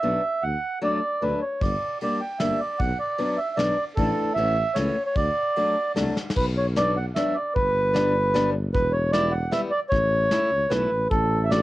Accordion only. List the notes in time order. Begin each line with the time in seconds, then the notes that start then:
Already playing: E5
0.43 F#5
0.84 D5
1.22 B4
1.42 C#5
1.61 D5
2.03 D5
2.21 G5
2.39 E5
2.60 D5
2.79 F#5
2.99 D5
3.37 E5
3.56 D5
3.95 A4
4.34 E5
4.74 C#5
5.06 C#5
5.16 D5
6.37 B4
6.57 C#5
6.77 D5
6.97 F#5
7.15 E5
7.34 D5
7.55 B4
8.74 B4
8.92 C#5
9.12 D5
9.31 F#5
9.52 E5
9.71 D5
9.89 C#5
10.70 B4
11.10 A4
11.44 E5
11.50 D5